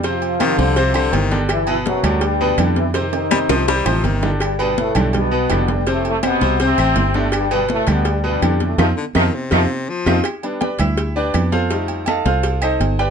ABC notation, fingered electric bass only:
X:1
M:4/4
L:1/8
Q:1/4=164
K:G
V:1 name="Fingered electric bass" clef=bass
=F,,3 C,,3 G,,,2- | G,,,3 D,,3 =F,,2- | =F,,3 C,,2 A,,, G,,,2- | G,,,3 B,,,3 =F,,,2- |
=F,,,3 C,,2 A,,, G,,,2- | G,,,3 D,,3 =F,,2 | =F,, z F,, z F,, z2 F,, | z3 D,,3 =F,,2- |
=F,,3 C,,3 G,,,2 |]